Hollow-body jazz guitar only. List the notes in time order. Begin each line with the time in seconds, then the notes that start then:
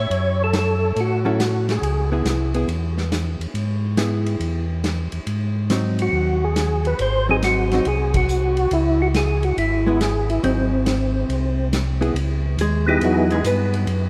1.25 F#3 C#4 E4 A4
2.12 B3 E4 G#4
2.55 B3 E4 G#4
3.98 B3 E4 G#4
5.71 F#3 C4 D#4
7.29 F#3 C4 D#4
7.73 F#3 C4 D#4
9.86 G#3 B3 E4
10.43 F#3 C4 D#4
12.01 B3 E4 G#4
12.61 G#3 G#4
12.88 G3 G4
13.04 F#3 F#4
13.32 G#3 G#4
13.47 B3 B4